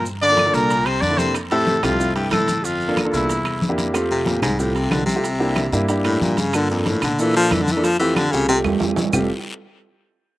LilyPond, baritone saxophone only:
\new Staff \with { instrumentName = "Baritone saxophone" } { \clef bass \time 4/4 \key f \major \tempo 4 = 185 r8 d4 bes,4 c8 d8 c8 | r8 a,4 f,4 g,8 a,4 | f,4 r8 e,2 r8 | r8 c8 bes,8 aes,8 a,8 c8 d8 c8~ |
c2 r8 a,8 bes,8 des8 | d8 f,8 a,8 d8 e8 f8 \tuplet 3/2 { e8 d8 e8 } | f8 e8 d8 des8 c8 r4. | r1 | }